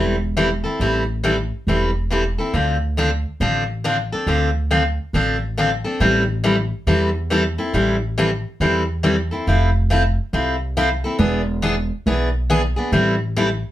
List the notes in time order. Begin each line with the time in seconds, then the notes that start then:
Already playing: E1 E3 G3 C4 E4 A4
0.37 E3 G3 C4 E4 A4
0.64 C4 E4 A4
0.80 A1 E3 G3 C4 E4 A4
1.24 E3 G3 C4 E4 A4
1.67 E1 E3 G3 C4 E4 A4
2.10 E3 G3 C4 E4 A4
2.38 C4 E4 A4
2.54 D2 D3 F3 C4 D4 A4
2.97 D3 F3 C4 D4 A4
3.40 A1 D3 F3 C4 D4 A4
3.84 D3 F3 C4 D4 A4
4.12 C4 D4 A4
4.27 D2 D3 F3 C4 D4 A4
4.71 D3 F3 C4 D4 A4
5.13 A1 D3 F3 C4 D4 A4
5.57 D3 F3 C4 D4 A4
5.84 C4 D4 A4
6.00 A1 E3 G3 C4 E4 A4
6.44 E3 G3 C4 E4 A4
6.87 E2 E3 G3 C4 E4 A4
7.30 E3 G3 C4 E4 A4
7.58 C4 E4 A4
7.74 A1 E3 G3 C4 E4 A4
8.18 E3 G3 C4 E4 A4
8.60 E2 E3 G3 C4 E4 A4
9.03 E3 G3 C4 E4 A4
9.31 C4 E4 A4
9.47 F1 F3 C4 E4 A4
9.90 F3 C4 E4 A4
10.33 C2 F3 C4 E4 A4
10.77 F3 C4 E4 A4
11.04 C4 E4 A4
11.19 E1 E3 B3 D4 G#4
11.62 E3 B3 D4 G#4
12.06 B1 E3 B3 D4 G#4
12.50 E3 B3 D4 G#4
12.76 B3 D4 G#4
12.92 A1 E3 G3 C4 E4 A4
13.36 E3 G3 C4 E4 A4